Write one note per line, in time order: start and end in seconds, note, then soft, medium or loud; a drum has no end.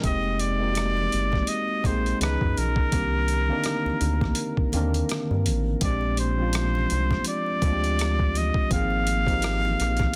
0.03 1.08 F1 medium
0.03 0.52 G#3 medium
0.03 0.52 A#3 medium
0.03 0.53 C4 medium
0.03 0.54 D#4 medium
0.03 0.42 D#5 loud
0.03 kick loud
0.03 closed hi-hat medium
0.08 0.54 G4 medium
0.24 muted conga soft
0.39 1.50 D5 loud
0.39 closed hi-hat medium
0.39 high conga medium
0.59 1.69 G#3 medium
0.59 1.70 A#3 medium
0.59 1.71 C4 medium
0.59 1.71 D#4 medium
0.64 0.68 F#4 medium
0.71 1.75 G4 medium
0.75 cross-stick medium
0.75 closed hi-hat medium
0.75 high conga medium
0.97 muted conga soft
0.97 low conga medium
1.12 1.42 G1 medium
1.12 closed hi-hat soft
1.32 kick medium
1.32 cross-stick soft
1.32 high conga medium
1.32 low conga medium
1.47 1.88 D#5 medium
1.47 closed hi-hat medium
1.47 muted conga soft
1.68 muted conga soft
1.84 2.14 A#1 medium
1.84 2.20 G#3 medium
1.84 2.21 A#3 medium
1.84 2.22 C4 medium
1.84 2.22 D#4 medium
1.84 2.21 C5 medium
1.84 kick medium
1.84 closed hi-hat medium
1.84 high conga medium
1.89 2.23 G#4 medium
2.06 closed hi-hat soft
2.20 2.37 C#2 loud
2.20 2.27 D#3 medium
2.20 2.85 B3 medium
2.20 2.85 C#4 medium
2.20 2.86 D#4 medium
2.20 2.60 B4 medium
2.20 cross-stick medium
2.20 closed hi-hat medium
2.25 2.87 E3 medium
2.25 2.87 G#4 medium
2.41 2.54 F#2 medium
2.41 kick medium
2.57 2.87 B1 loud
2.57 4.74 A#4 medium
2.57 closed hi-hat medium
2.57 low conga soft
2.76 kick loud
2.91 3.51 C2 loud
2.91 3.41 D#3 medium
2.91 3.41 A#3 medium
2.91 3.42 C4 medium
2.91 3.42 D4 medium
2.91 kick loud
2.91 closed hi-hat medium
2.96 3.43 G4 medium
3.28 closed hi-hat medium
3.28 high conga medium
3.48 3.54 D3 medium
3.48 4.59 A#3 medium
3.48 4.60 C4 medium
3.48 4.61 D4 medium
3.53 4.62 D#4 medium
3.53 4.61 A#4 medium
3.64 cross-stick medium
3.64 closed hi-hat medium
3.64 muted conga soft
3.64 high conga medium
3.86 3.92 D2 soft
3.86 muted conga soft
3.86 low conga medium
4.01 4.31 D2 medium
4.01 closed hi-hat medium
4.21 kick medium
4.21 cross-stick soft
4.21 high conga medium
4.21 low conga medium
4.35 closed hi-hat medium
4.57 kick medium
4.72 5.03 D#2 medium
4.72 4.80 D3 medium
4.72 5.70 A#3 medium
4.72 5.70 C4 medium
4.72 5.71 D4 medium
4.72 closed hi-hat medium
4.72 high conga medium
4.77 5.72 D#3 medium
4.77 5.71 A#4 medium
4.94 closed hi-hat soft
5.09 cross-stick medium
5.09 closed hi-hat medium
5.31 5.48 G2 medium
5.31 muted conga soft
5.46 5.76 A1 medium
5.46 closed hi-hat medium
5.46 low conga medium
5.81 6.86 A#1 loud
5.81 6.30 F3 medium
5.81 6.31 G#3 medium
5.81 6.31 C4 medium
5.81 6.32 D4 medium
5.81 6.16 D5 medium
5.81 kick loud
5.81 closed hi-hat medium
5.81 muted conga soft
5.86 6.32 G4 medium
6.01 muted conga soft
6.17 7.23 C5 medium
6.17 closed hi-hat medium
6.17 high conga medium
6.38 7.48 F3 medium
6.38 7.48 G#3 medium
6.38 7.49 C4 medium
6.38 6.46 C#4 soft
6.42 7.50 F4 medium
6.48 7.53 D4 medium
6.53 cross-stick medium
6.53 closed hi-hat medium
6.53 muted conga soft
6.53 high conga medium
6.75 muted conga soft
6.75 low conga medium
6.90 7.21 C2 medium
6.90 closed hi-hat medium
7.11 kick medium
7.11 cross-stick soft
7.11 high conga medium
7.11 low conga medium
7.24 8.39 D5 loud
7.24 closed hi-hat medium
7.24 muted conga soft
7.46 muted conga soft
7.61 8.51 D2 medium
7.61 8.58 F3 medium
7.61 8.59 G#3 medium
7.61 8.59 C4 medium
7.61 kick medium
7.61 closed hi-hat medium
7.61 high conga medium
7.66 8.60 D4 medium
7.66 7.72 F4 medium
7.73 8.64 G4 medium
7.84 closed hi-hat soft
7.99 cross-stick medium
7.99 closed hi-hat medium
8.19 kick medium
8.19 muted conga soft
8.35 8.72 D#5 medium
8.35 closed hi-hat medium
8.35 low conga medium
8.54 kick loud
8.70 9.76 G#1 medium
8.70 9.19 F3 medium
8.70 9.20 A#3 medium
8.70 9.20 C4 medium
8.70 9.21 D#4 medium
8.70 10.16 F5 loud
8.70 kick medium
8.70 closed hi-hat medium
8.75 9.21 G#4 medium
8.90 muted conga soft
9.07 closed hi-hat medium
9.07 high conga medium
9.26 10.16 F3 medium
9.26 10.16 A#3 medium
9.26 10.16 C4 medium
9.26 10.16 D#4 medium
9.26 kick medium
9.26 closed hi-hat soft
9.32 10.16 G4 medium
9.42 cross-stick loud
9.42 closed hi-hat medium
9.42 high conga medium
9.65 muted conga soft
9.65 low conga medium
9.80 10.09 A#1 medium
9.80 cross-stick soft
9.80 closed hi-hat medium
9.97 kick medium
9.97 closed hi-hat soft
9.97 high conga medium
9.97 low conga medium
10.02 cross-stick soft